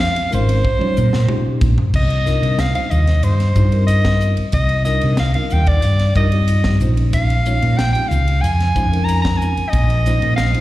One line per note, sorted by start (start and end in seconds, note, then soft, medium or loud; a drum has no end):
0.00 0.30 F5 loud
0.00 snare loud
0.00 ride medium
0.14 0.23 F4 soft
0.14 0.23 G4 soft
0.14 ride medium
0.31 0.62 G#1 medium
0.31 0.62 G#3 medium
0.31 0.62 C#4 medium
0.31 0.62 D#4 medium
0.31 0.62 F4 medium
0.31 0.62 A#4 medium
0.31 1.59 C5 medium
0.31 hi-hat pedal medium
0.49 ride medium
0.65 kick medium
0.79 1.00 G#3 medium
0.79 1.00 C#4 medium
0.79 1.00 D#4 medium
0.79 1.00 F4 medium
0.79 1.00 C#5 loud
0.79 muted fretless electric bass stroke soft
0.79 high tom medium
0.97 1.12 A#2 loud
0.97 hi-hat pedal medium
1.13 1.28 A#2 medium
1.13 1.21 F4 soft
1.13 1.21 D#5 soft
1.13 snare medium
1.28 1.69 G#3 medium
1.28 1.69 C#4 medium
1.28 1.69 D#4 medium
1.28 1.69 F4 medium
1.28 1.69 G4 medium
1.28 mid tom medium
1.47 muted fretless electric bass stroke soft
1.61 1.77 A#1 medium
1.61 kick medium
1.61 hi-hat pedal medium
1.78 floor tom medium
1.94 2.39 C2 medium
1.94 2.62 D#5 medium
1.94 kick loud
1.94 crash loud
2.10 ride medium
2.26 2.56 G3 medium
2.26 2.56 D4 medium
2.26 2.56 D#4 medium
2.26 2.56 F4 medium
2.26 2.57 A#4 medium
2.26 snare soft
2.26 hi-hat pedal medium
2.42 2.57 C3 medium
2.42 ride medium
2.58 2.73 C2 medium
2.58 2.75 F5 medium
2.58 snare loud
2.58 hi-hat pedal medium
2.58 ride medium
2.74 3.05 G3 medium
2.74 3.05 D4 medium
2.74 3.05 D#4 medium
2.74 3.05 F4 medium
2.74 3.05 C5 medium
2.74 2.92 F5 medium
2.74 ride medium
2.91 3.21 D#2 medium
2.91 3.25 D#5 medium
2.91 hi-hat pedal medium
3.07 snare soft
3.07 ride medium
3.23 3.53 G2 medium
3.23 3.31 F4 soft
3.23 3.32 A#4 soft
3.23 3.86 C5 medium
3.23 hi-hat pedal medium
3.23 ride medium
3.40 snare soft
3.40 ride medium
3.55 4.34 G2 medium
3.55 3.66 G3 medium
3.55 3.66 D4 medium
3.55 3.66 D#4 medium
3.55 3.66 F4 medium
3.55 3.66 G4 medium
3.55 kick medium
3.55 hi-hat pedal medium
3.72 4.42 G3 medium
3.72 4.42 C4 medium
3.72 4.42 D#4 medium
3.72 4.43 F4 medium
3.72 4.43 A#4 medium
3.72 ride medium
3.87 4.33 D#5 medium
3.87 hi-hat pedal medium
3.87 ride medium
4.05 kick medium
4.05 snare medium
4.05 ride soft
4.20 hi-hat pedal medium
4.37 muted fretless electric bass stroke soft
4.37 ride medium
4.52 4.98 C2 medium
4.52 4.84 D#5 medium
4.52 kick loud
4.52 hi-hat pedal medium
4.52 ride medium
4.69 ride medium
4.85 5.15 G3 medium
4.85 5.16 D4 medium
4.85 5.16 D#4 medium
4.85 5.16 F4 medium
4.85 5.16 A#4 medium
4.85 5.16 D#5 medium
4.85 snare soft
4.85 hi-hat pedal medium
5.01 5.17 C3 medium
5.01 ride medium
5.17 5.34 C2 medium
5.17 5.34 F5 medium
5.17 snare loud
5.17 hi-hat pedal medium
5.17 ride medium
5.34 5.65 G3 medium
5.34 5.65 D4 medium
5.34 5.65 D#4 medium
5.34 5.65 F4 medium
5.34 5.65 A#4 medium
5.34 5.54 F5 medium
5.34 ride medium
5.50 5.81 D#2 medium
5.50 5.69 G5 medium
5.50 hi-hat pedal medium
5.66 6.16 D5 loud
5.66 kick medium
5.66 ride medium
5.82 6.13 G2 medium
5.82 5.92 F4 soft
5.82 5.92 C5 soft
5.82 hi-hat pedal medium
5.82 ride medium
5.99 snare soft
5.99 ride medium
6.15 6.77 G2 medium
6.15 6.26 G3 medium
6.15 6.26 D4 medium
6.15 6.26 D#4 medium
6.15 6.26 F4 medium
6.15 6.26 A#4 loud
6.15 6.77 D#5 medium
6.15 kick medium
6.15 hi-hat pedal medium
6.32 6.81 G3 medium
6.32 6.81 C4 medium
6.32 6.81 D#4 medium
6.32 6.81 F4 medium
6.32 6.81 G4 medium
6.32 ride medium
6.48 hi-hat pedal medium
6.48 ride medium
6.64 kick medium
6.64 snare medium
6.64 ride medium
6.80 7.58 A#1 medium
6.80 7.33 G#3 medium
6.80 7.33 C#4 medium
6.80 7.33 D#4 medium
6.80 7.34 F4 medium
6.80 7.33 C5 medium
6.80 hi-hat pedal medium
6.97 ride medium
7.13 7.79 F5 medium
7.13 kick loud
7.13 hi-hat pedal medium
7.13 ride medium
7.30 ride medium
7.46 7.76 G#3 medium
7.46 7.76 C#4 medium
7.46 7.76 D#4 medium
7.46 7.76 F4 medium
7.46 7.76 C#5 loud
7.46 hi-hat pedal medium
7.62 7.77 A#2 medium
7.62 ride medium
7.77 7.93 A#1 medium
7.77 7.92 G5 loud
7.77 snare loud
7.77 hi-hat pedal medium
7.77 ride medium
7.93 8.25 G#3 medium
7.93 8.25 C#4 medium
7.93 8.25 D#4 medium
7.93 8.25 F4 medium
7.93 8.25 G4 medium
7.93 8.10 G5 medium
7.93 ride medium
8.08 8.40 C#2 medium
8.08 8.43 F5 medium
8.08 hi-hat pedal medium
8.28 ride medium
8.42 8.72 F2 medium
8.42 8.51 F4 soft
8.42 8.51 C5 soft
8.42 9.06 G#5 loud
8.42 hi-hat pedal medium
8.42 ride medium
8.60 snare soft
8.60 ride medium
8.75 9.53 F2 medium
8.75 8.86 G#3 medium
8.75 8.86 C#4 medium
8.75 8.86 D#4 medium
8.75 8.86 F4 medium
8.75 8.86 C5 loud
8.75 kick medium
8.75 hi-hat pedal medium
8.91 9.62 G#3 medium
8.91 9.62 C#4 medium
8.91 9.62 D#4 medium
8.91 9.62 F4 medium
8.91 9.62 A#4 medium
8.91 ride medium
9.04 9.21 A#5 loud
9.09 hi-hat pedal medium
9.09 ride medium
9.22 9.39 A#5 loud
9.22 kick medium
9.22 snare medium
9.22 ride medium
9.37 9.71 G#5 medium
9.37 hi-hat pedal medium
9.57 muted fretless electric bass stroke soft
9.57 ride medium
9.69 10.35 D#5 loud
9.69 kick loud
9.69 hi-hat pedal medium
9.69 ride medium
9.73 10.18 A#1 medium
9.90 ride medium
10.06 10.36 G#3 medium
10.06 10.36 C#4 medium
10.06 10.36 D#4 medium
10.06 10.36 F4 medium
10.06 10.36 C5 medium
10.06 snare soft
10.06 hi-hat pedal medium
10.22 10.36 A#2 medium
10.22 ride medium
10.36 10.53 A#1 medium
10.36 10.61 F5 loud
10.36 snare loud
10.36 hi-hat pedal medium
10.36 ride medium
10.54 10.61 G#3 medium
10.54 10.61 C#4 medium
10.54 10.61 D#4 medium
10.54 10.61 F4 medium
10.54 10.61 C5 medium
10.54 ride medium